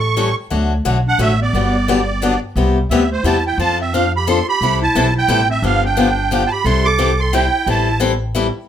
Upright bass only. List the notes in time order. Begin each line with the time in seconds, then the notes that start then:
Already playing: A1
0.51 D2
0.85 B1
1.18 A1
1.53 G1
2.56 C2
2.89 D2
3.23 E2
3.58 F2
4.61 C2
4.95 B1
5.28 A1
5.62 G1
6.64 C2
7.66 A1